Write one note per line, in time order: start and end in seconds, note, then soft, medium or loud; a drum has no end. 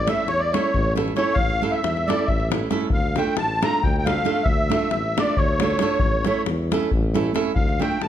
0.07 0.23 A3 medium
0.07 0.24 C#4 medium
0.07 0.24 E4 medium
0.07 0.24 A4 medium
0.07 0.29 E5 medium
0.07 davul high medium
0.27 0.55 E2 medium
0.27 0.41 C#5 medium
0.27 davul high medium
0.39 0.53 D5 loud
0.52 0.70 A3 medium
0.52 0.70 C#4 medium
0.52 0.71 E4 medium
0.52 0.71 A4 medium
0.52 0.93 C#5 medium
0.52 davul high medium
0.74 1.12 A1 loud
0.74 davul low medium
0.96 1.12 A3 medium
0.96 1.12 C#4 medium
0.96 1.13 E4 soft
0.96 1.13 A4 medium
0.96 davul high medium
1.08 davul high soft
1.16 1.32 A3 medium
1.16 1.33 C#4 medium
1.16 1.33 E4 medium
1.16 1.33 A4 medium
1.16 1.37 C#5 loud
1.16 davul high medium
1.34 1.64 A1 medium
1.34 1.72 F5 loud
1.34 davul low medium
1.50 davul high soft
1.62 1.78 A3 medium
1.62 1.79 C#4 medium
1.62 1.79 E4 medium
1.62 1.79 A4 medium
1.71 2.09 E5 medium
1.71 davul high soft
1.83 2.10 E2 medium
1.83 davul high medium
1.97 davul high soft
2.07 2.24 A3 medium
2.07 2.25 C#4 medium
2.07 2.25 E4 medium
2.07 2.26 A4 medium
2.07 2.29 D5 medium
2.07 davul high medium
2.19 davul high soft
2.26 2.67 A1 medium
2.26 2.49 E5 medium
2.26 davul low medium
2.40 davul high soft
2.50 2.67 A3 soft
2.50 2.67 C#4 medium
2.50 2.67 E4 soft
2.50 2.68 A4 medium
2.50 davul high medium
2.70 2.87 A3 medium
2.70 2.87 C#4 medium
2.70 2.87 E4 medium
2.70 2.87 A4 medium
2.70 davul high medium
2.81 davul high soft
2.90 3.20 D2 medium
2.90 3.19 F5 medium
2.90 davul low loud
3.16 3.33 A3 medium
3.16 3.34 D4 medium
3.16 3.34 F4 medium
3.16 3.34 A4 medium
3.16 3.36 G5 medium
3.16 davul high medium
3.37 3.66 A1 medium
3.37 3.65 A5 loud
3.37 davul high medium
3.62 3.79 A3 medium
3.62 3.79 D4 medium
3.62 3.80 F4 medium
3.62 3.80 A4 medium
3.62 3.84 A#5 loud
3.62 davul high medium
3.74 davul high soft
3.83 4.21 D2 medium
3.83 3.97 G5 medium
3.83 davul low medium
3.98 4.06 G5 medium
4.05 4.22 A3 medium
4.05 4.22 D4 medium
4.05 4.23 F4 medium
4.05 4.23 A4 medium
4.05 4.46 F5 medium
4.05 davul high medium
4.18 davul high soft
4.25 4.41 A3 medium
4.25 4.41 D4 medium
4.25 4.42 F4 medium
4.25 4.42 A4 medium
4.25 davul high medium
4.43 4.74 D2 medium
4.43 5.19 E5 medium
4.43 davul low loud
4.70 4.87 A3 medium
4.70 4.88 D4 medium
4.70 4.88 F4 medium
4.70 4.88 A4 medium
4.70 davul high medium
4.91 5.20 A1 medium
4.91 davul high medium
5.17 5.34 A3 medium
5.17 5.34 D4 medium
5.17 5.34 F4 medium
5.17 5.35 A4 medium
5.17 5.39 D5 medium
5.17 davul high medium
5.27 davul high soft
5.37 5.76 D2 loud
5.37 6.42 C#5 medium
5.37 davul low medium
5.60 5.77 A3 medium
5.60 5.77 D4 medium
5.60 5.78 F4 medium
5.60 5.78 A4 medium
5.60 davul high medium
5.70 davul high soft
5.79 5.96 A3 medium
5.79 5.97 D4 medium
5.79 5.97 F4 medium
5.79 5.97 A4 medium
5.79 davul high medium
5.99 6.29 A1 medium
5.99 davul low loud
6.25 6.42 A3 medium
6.25 6.43 C#4 medium
6.25 6.43 E4 medium
6.25 6.43 A4 medium
6.25 davul high medium
6.46 6.75 E2 medium
6.46 davul high medium
6.71 6.89 A3 medium
6.71 6.89 C#4 medium
6.71 6.89 E4 medium
6.71 6.90 A4 medium
6.71 davul high medium
6.83 davul high soft
6.91 7.31 A1 loud
6.91 davul low medium
7.14 7.31 A3 medium
7.14 7.31 C#4 medium
7.14 7.32 E4 medium
7.14 7.32 A4 medium
7.14 davul high medium
7.27 davul high soft
7.34 7.51 A3 medium
7.34 7.51 C#4 medium
7.34 7.51 E4 medium
7.34 7.51 A4 medium
7.34 davul high medium
7.55 7.84 D2 medium
7.55 7.82 F5 medium
7.55 davul low medium
7.69 davul high soft
7.79 7.97 A3 medium
7.79 7.97 D4 medium
7.79 7.98 F4 medium
7.79 7.98 A4 medium
7.79 8.02 G5 medium
7.79 davul high medium
7.92 davul high soft
8.01 8.08 A1 medium
8.01 8.08 A5 medium
8.01 davul high medium